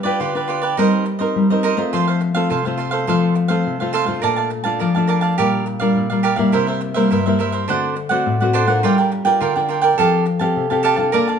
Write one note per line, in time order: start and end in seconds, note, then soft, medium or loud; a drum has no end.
0.00 0.18 G3 medium
0.00 0.18 D5 medium
0.05 0.30 D4 medium
0.05 0.30 F4 medium
0.05 0.19 G4 medium
0.05 0.19 B4 medium
0.05 0.30 B4 medium
0.20 0.75 D3 medium
0.20 0.34 F4 medium
0.20 0.34 G4 soft
0.20 0.34 B4 medium
0.20 0.34 D5 medium
0.35 0.74 D4 medium
0.35 0.74 F4 medium
0.35 0.48 G4 soft
0.35 0.74 B4 medium
0.35 0.48 B4 soft
0.35 0.48 D5 soft
0.48 0.62 F4 medium
0.48 0.62 G4 medium
0.48 0.62 B4 medium
0.48 0.60 D5 medium
0.62 0.77 G4 medium
0.62 0.77 B4 medium
0.62 0.76 D5 medium
0.77 1.33 G3 medium
0.77 1.05 C4 medium
0.77 1.04 D#4 medium
0.77 1.06 D#4 medium
0.77 1.04 A#4 medium
0.77 1.06 A#4 medium
0.77 1.05 C5 medium
0.77 1.05 D#5 medium
1.06 muted cavaquinho stroke soft
1.19 1.45 C4 medium
1.19 1.45 D#4 medium
1.19 1.49 A#4 soft
1.19 1.45 A#4 medium
1.19 1.48 C5 medium
1.19 1.48 D#5 medium
1.36 1.77 G3 medium
1.50 1.75 C4 medium
1.50 1.75 D#4 medium
1.50 1.75 A#4 medium
1.50 1.63 A#4 soft
1.50 1.63 C5 soft
1.50 1.64 D#5 soft
1.63 1.77 D#4 medium
1.63 1.77 A#4 medium
1.63 1.77 C5 medium
1.63 1.76 D#5 medium
1.77 2.31 A3 medium
1.77 2.31 C4 medium
1.77 2.31 F4 medium
1.77 1.92 A#4 soft
1.77 1.92 C5 soft
1.77 1.91 D#5 medium
1.93 2.48 F3 medium
1.93 2.06 F4 medium
1.93 2.07 A4 medium
1.93 2.07 C5 medium
1.93 2.06 F5 medium
2.07 2.20 A4 soft
2.07 2.20 C5 soft
2.07 2.21 F5 soft
2.21 muted cavaquinho stroke soft
2.34 2.60 A3 medium
2.34 2.60 C4 medium
2.34 2.60 F4 medium
2.34 2.49 A4 medium
2.34 2.49 C5 medium
2.34 2.49 F5 medium
2.50 3.05 C3 medium
2.50 2.64 F4 soft
2.50 2.64 A4 medium
2.50 2.64 C5 medium
2.50 2.64 F5 medium
2.65 3.04 A3 medium
2.65 3.04 C4 medium
2.65 3.05 F4 medium
2.65 2.77 A4 soft
2.65 2.78 C5 soft
2.65 2.78 F5 soft
2.78 2.92 F4 soft
2.78 2.92 A4 medium
2.78 2.91 C5 medium
2.78 2.90 F5 medium
2.91 3.07 A4 medium
2.91 3.06 C5 medium
2.91 3.06 F5 medium
3.07 3.63 F3 medium
3.07 3.47 A3 medium
3.07 3.47 C4 medium
3.07 3.34 F4 medium
3.07 3.47 F4 medium
3.07 3.34 A4 medium
3.07 3.35 C5 medium
3.07 3.35 F5 medium
3.35 muted cavaquinho stroke soft
3.48 3.75 A3 medium
3.48 3.75 C4 medium
3.48 3.75 F4 medium
3.48 3.78 A4 medium
3.48 3.78 C5 medium
3.48 3.77 F5 medium
3.66 4.21 C3 medium
3.80 4.05 A3 medium
3.80 4.05 C4 medium
3.80 4.05 F4 medium
3.80 3.92 A4 soft
3.80 3.93 C5 soft
3.80 3.93 F5 soft
3.93 4.07 F4 medium
3.93 4.07 A4 medium
3.93 4.06 C5 medium
3.93 4.05 F5 medium
4.06 4.61 A3 medium
4.06 4.61 D4 medium
4.06 4.62 F4 medium
4.06 4.22 A4 soft
4.06 4.21 C5 soft
4.06 4.21 F5 soft
4.22 4.78 A#2 medium
4.22 4.36 A#4 medium
4.22 4.36 D5 medium
4.22 4.36 F5 medium
4.22 4.35 A5 medium
4.36 4.49 D5 soft
4.36 4.50 F5 soft
4.36 4.50 A5 medium
4.50 muted cavaquinho stroke soft
4.64 4.90 A3 medium
4.64 4.90 D4 medium
4.64 4.90 F4 medium
4.64 4.79 D5 medium
4.64 4.79 F5 medium
4.64 4.78 A5 medium
4.79 5.36 F3 medium
4.79 4.93 A#4 soft
4.79 4.94 D5 medium
4.79 4.94 F5 medium
4.79 4.93 A5 medium
4.95 5.34 A3 medium
4.95 5.34 D4 medium
4.95 5.35 F4 medium
4.95 5.07 D5 soft
4.95 5.07 F5 soft
4.95 5.08 A5 soft
5.07 5.22 A#4 medium
5.07 5.22 D5 medium
5.07 5.21 F5 medium
5.07 5.20 A5 medium
5.21 5.37 D5 medium
5.21 5.36 F5 medium
5.21 5.36 A5 medium
5.38 5.93 A#2 medium
5.38 5.77 G3 medium
5.38 5.77 D4 medium
5.38 5.77 F4 medium
5.38 5.65 G4 medium
5.38 5.65 A#4 medium
5.38 5.66 D5 medium
5.38 5.66 F5 medium
5.66 muted cavaquinho stroke soft
5.80 6.05 G3 medium
5.80 6.05 D4 medium
5.80 6.06 F4 medium
5.80 6.09 A#4 medium
5.80 6.09 D5 medium
5.80 6.08 F5 medium
5.96 6.51 A#2 medium
6.10 6.35 G3 medium
6.10 6.35 D4 medium
6.10 6.35 F4 medium
6.10 6.23 A#4 soft
6.10 6.23 D5 soft
6.10 6.23 F5 medium
6.23 6.37 G4 medium
6.23 6.37 A#4 medium
6.23 6.36 D5 medium
6.23 6.35 F5 medium
6.36 6.91 G3 medium
6.36 6.91 A#3 medium
6.36 6.92 E4 medium
6.36 6.52 A#4 soft
6.36 6.51 D5 soft
6.36 6.51 F5 medium
6.52 7.08 C3 medium
6.52 6.66 E4 medium
6.52 6.66 A#4 medium
6.52 6.67 C5 medium
6.52 6.66 E5 medium
6.67 6.80 A#4 soft
6.67 6.80 C5 soft
6.67 6.81 E5 soft
6.81 muted cavaquinho stroke soft
6.94 7.20 G3 medium
6.94 7.21 A#3 medium
6.94 7.21 E4 medium
6.94 7.10 A#4 medium
6.94 7.09 C5 medium
6.94 7.09 E5 medium
7.11 7.66 G2 medium
7.11 7.24 E4 medium
7.11 7.24 A#4 medium
7.11 7.25 C5 medium
7.11 7.25 E5 medium
7.26 7.64 G3 medium
7.26 7.65 A#3 medium
7.26 7.65 E4 medium
7.26 7.38 A#4 soft
7.26 7.39 C5 soft
7.26 7.39 E5 soft
7.39 7.52 E4 medium
7.39 7.53 A#4 medium
7.39 7.52 C5 medium
7.39 7.51 E5 medium
7.52 7.67 A#4 medium
7.52 7.67 C5 medium
7.52 7.66 E5 medium
7.68 8.23 D3 medium
7.68 7.96 A3 medium
7.68 7.96 C4 medium
7.68 7.95 D4 medium
7.68 7.96 F#4 medium
7.68 7.95 C5 medium
7.68 7.95 D5 medium
7.68 7.96 F#5 medium
7.96 muted cavaquinho stroke soft
8.09 8.35 A3 medium
8.09 8.35 C4 medium
8.09 8.36 F#4 medium
8.09 8.39 C5 medium
8.09 8.39 D5 medium
8.09 8.38 F#5 medium
8.26 8.81 A2 medium
8.40 8.65 A3 medium
8.40 8.65 C4 medium
8.40 8.65 F#4 medium
8.40 8.53 C5 soft
8.40 8.53 D5 soft
8.40 8.54 F#5 soft
8.53 8.67 D4 medium
8.53 8.68 C5 medium
8.53 8.67 D5 medium
8.53 8.66 F#5 medium
8.67 9.21 D4 medium
8.67 9.22 F4 medium
8.67 9.22 A#4 medium
8.67 8.82 C5 soft
8.67 8.82 D5 soft
8.67 8.81 F#5 soft
8.83 9.38 G3 medium
8.83 8.97 F4 medium
8.83 8.97 A#4 medium
8.83 8.97 D5 medium
8.83 8.97 G5 medium
8.98 9.11 A#4 soft
8.98 9.11 D5 soft
8.98 9.11 G5 medium
9.11 muted cavaquinho stroke soft
9.25 9.50 D4 medium
9.25 9.50 F4 medium
9.25 9.50 A#4 medium
9.25 9.40 A#4 medium
9.25 9.39 D5 medium
9.25 9.39 G5 medium
9.40 9.96 D3 medium
9.40 9.54 F4 medium
9.40 9.54 A#4 medium
9.40 9.55 D5 medium
9.40 9.54 G5 medium
9.56 9.94 D4 medium
9.56 9.95 F4 medium
9.56 9.95 A#4 medium
9.56 9.68 A#4 soft
9.56 9.69 D5 soft
9.56 9.69 G5 soft
9.69 9.82 F4 medium
9.69 9.82 A#4 medium
9.69 9.81 D5 medium
9.69 9.80 G5 medium
9.82 9.97 A#4 medium
9.82 9.97 D5 medium
9.82 9.96 G5 medium
9.98 10.53 F3 medium
9.98 10.26 C4 medium
9.98 10.25 G4 medium
9.98 10.26 G4 medium
9.98 10.25 A4 medium
9.98 10.26 A4 medium
9.98 10.25 F5 medium
9.98 10.26 A5 medium
10.26 muted cavaquinho stroke soft
10.39 10.65 C4 medium
10.39 10.65 G4 medium
10.39 10.69 G4 medium
10.39 10.66 A4 medium
10.39 10.69 F5 medium
10.39 10.68 A5 medium
10.56 11.11 C3 medium
10.70 10.95 C4 medium
10.70 10.95 G4 medium
10.70 10.82 G4 soft
10.70 10.95 A4 medium
10.70 10.83 F5 soft
10.70 10.84 A5 medium
10.83 10.97 G4 medium
10.83 10.97 A4 medium
10.83 10.96 F5 medium
10.83 10.95 A5 medium
10.96 11.39 D4 medium
10.96 11.39 F4 medium
10.96 11.12 G4 soft
10.96 11.39 A4 medium
10.96 11.12 F5 soft
10.96 11.11 A5 soft
11.12 11.39 A#3 medium
11.12 11.26 A#4 medium
11.12 11.27 D5 medium
11.12 11.27 F5 medium
11.12 11.26 A5 medium
11.27 11.39 D5 soft
11.27 11.39 F5 soft
11.27 11.39 A5 soft